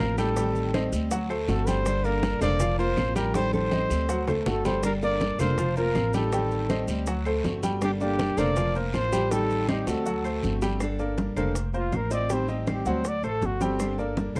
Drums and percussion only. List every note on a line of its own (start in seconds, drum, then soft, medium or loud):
0.00 high conga medium
0.00 short guiro medium
0.00 maracas soft
0.18 high bongo soft
0.18 short guiro medium
0.18 maracas medium
0.36 high bongo medium
0.36 high conga soft
0.36 long guiro medium
0.36 maracas medium
0.55 high bongo soft
0.55 high conga soft
0.55 maracas soft
0.74 high bongo medium
0.74 high conga loud
0.74 short guiro medium
0.74 claves medium
0.74 maracas soft
0.93 high bongo soft
0.93 high conga soft
0.93 short guiro medium
0.93 maracas medium
1.11 high bongo medium
1.11 high conga soft
1.11 long guiro medium
1.11 maracas medium
1.30 high conga soft
1.30 claves medium
1.30 maracas soft
1.48 high bongo soft
1.48 low bongo medium
1.48 high conga medium
1.48 short guiro medium
1.48 maracas soft
1.67 high bongo soft
1.67 high conga medium
1.67 short guiro medium
1.67 maracas medium
1.86 high bongo medium
1.86 high conga soft
1.86 long guiro medium
1.86 claves medium
1.86 maracas medium
2.04 high bongo soft
2.04 high conga soft
2.04 maracas soft
2.23 high bongo medium
2.23 high conga medium
2.23 short guiro medium
2.23 maracas soft
2.41 low conga medium
2.41 short guiro medium
2.41 claves medium
2.41 maracas medium
2.60 high bongo medium
2.60 high conga soft
2.60 low conga medium
2.60 long guiro medium
2.60 maracas medium
2.79 high conga soft
2.79 maracas soft
2.97 high bongo soft
2.97 low bongo medium
2.97 high conga medium
2.97 short guiro medium
2.97 claves medium
2.97 maracas soft
3.16 high bongo soft
3.16 high conga medium
3.16 short guiro medium
3.16 maracas medium
3.34 high bongo medium
3.34 high conga medium
3.34 long guiro medium
3.34 maracas medium
3.53 high bongo soft
3.53 high conga medium
3.53 maracas soft
3.71 high bongo medium
3.71 high conga loud
3.71 short guiro medium
3.71 claves medium
3.71 maracas soft
3.90 high bongo soft
3.90 short guiro medium
3.90 maracas medium
4.09 high bongo medium
4.09 long guiro medium
4.09 maracas medium
4.27 high bongo loud
4.27 low conga medium
4.27 claves medium
4.27 maracas soft
4.46 high bongo medium
4.46 low conga loud
4.46 short guiro medium
4.46 maracas soft
4.65 low bongo loud
4.65 low conga medium
4.65 short guiro medium
4.65 maracas medium
4.83 high bongo medium
4.83 high conga soft
4.83 long guiro medium
4.83 claves medium
4.83 maracas medium
5.02 high bongo soft
5.02 high conga soft
5.02 maracas soft
5.20 high bongo medium
5.20 high conga medium
5.20 short guiro medium
5.20 maracas soft
5.39 high bongo soft
5.39 low conga medium
5.39 short guiro medium
5.39 claves medium
5.39 maracas medium
5.58 high bongo medium
5.58 high conga soft
5.58 low conga medium
5.58 long guiro medium
5.58 maracas medium
5.77 high conga soft
5.77 maracas soft
5.95 high bongo soft
5.95 low bongo medium
5.95 high conga medium
5.95 short guiro medium
5.95 claves medium
5.95 maracas soft
6.14 high bongo soft
6.14 high conga medium
6.14 short guiro medium
6.14 maracas medium
6.32 high bongo medium
6.32 long guiro medium
6.32 maracas medium
6.51 high bongo soft
6.51 high conga soft
6.51 maracas soft
6.69 high bongo medium
6.69 high conga medium
6.69 short guiro medium
6.69 claves medium
6.69 maracas soft
6.88 high bongo soft
6.88 high conga soft
6.88 short guiro medium
6.88 maracas medium
7.06 high bongo medium
7.06 high conga soft
7.06 long guiro medium
7.06 maracas medium
7.25 high conga soft
7.25 claves medium
7.25 maracas soft
7.44 high bongo soft
7.44 low bongo medium
7.44 high conga medium
7.44 short guiro medium
7.44 maracas soft
7.63 high bongo soft
7.63 high conga medium
7.63 short guiro medium
7.63 maracas medium
7.82 high bongo medium
7.82 high conga soft
7.82 long guiro medium
7.82 claves medium
7.82 maracas medium
8.00 high bongo soft
8.00 high conga soft
8.00 maracas soft
8.19 high bongo medium
8.19 high conga loud
8.19 short guiro medium
8.19 maracas soft
8.38 high bongo soft
8.38 low conga medium
8.38 short guiro medium
8.38 claves medium
8.38 maracas medium
8.56 high bongo medium
8.56 high conga soft
8.56 low conga medium
8.56 long guiro medium
8.56 maracas medium
8.75 high conga soft
8.75 maracas soft
8.94 high bongo soft
8.94 low bongo medium
8.94 high conga medium
8.94 short guiro medium
8.94 claves medium
8.94 maracas soft
9.13 high bongo soft
9.13 high conga medium
9.13 short guiro medium
9.13 maracas medium
9.31 high bongo medium
9.31 high conga soft
9.31 long guiro medium
9.31 maracas medium
9.50 high bongo soft
9.50 high conga soft
9.50 maracas soft
9.69 high bongo medium
9.69 high conga loud
9.69 short guiro medium
9.69 claves medium
9.69 maracas soft
9.87 high bongo medium
9.87 high conga soft
9.87 short guiro medium
9.87 maracas medium
10.06 high conga soft
10.06 long guiro medium
10.06 maracas medium
10.25 high conga soft
10.25 claves medium
10.25 maracas soft
10.43 high conga medium
10.43 short guiro medium
10.43 maracas soft
10.62 low bongo medium
10.62 short guiro medium
10.62 maracas medium
10.80 high bongo medium
10.80 claves medium
10.80 maracas medium
10.99 high bongo soft
10.99 high conga soft
10.99 maracas soft
11.18 high bongo medium
11.18 high conga medium
11.18 maracas soft
11.37 high bongo soft
11.37 low conga medium
11.37 claves medium
11.37 maracas medium
11.55 high bongo medium
11.55 high conga soft
11.55 maracas medium
11.74 high conga soft
11.74 maracas soft
11.92 high bongo soft
11.92 low bongo medium
11.92 high conga medium
11.92 claves medium
11.92 maracas soft
12.11 high bongo soft
12.11 maracas medium
12.30 high bongo medium
12.30 high conga soft
12.30 maracas medium
12.48 high bongo soft
12.48 high conga soft
12.48 maracas soft
12.67 high bongo medium
12.67 high conga medium
12.67 claves medium
12.67 maracas soft
12.86 high bongo soft
12.86 high conga soft
12.86 maracas medium
13.04 high bongo medium
13.04 high conga soft
13.04 maracas medium
13.23 high conga soft
13.23 claves medium
13.23 maracas soft
13.42 high bongo soft
13.42 low bongo medium
13.42 high conga medium
13.42 maracas soft
13.61 high bongo soft
13.61 high conga medium
13.61 maracas medium
13.79 high bongo medium
13.79 high conga soft
13.79 claves medium
13.79 maracas medium
13.98 high bongo soft
13.98 high conga soft
13.98 maracas soft
14.17 high bongo medium
14.17 high conga medium
14.17 maracas soft
14.36 high bongo soft
14.36 low conga medium
14.36 claves medium
14.36 maracas medium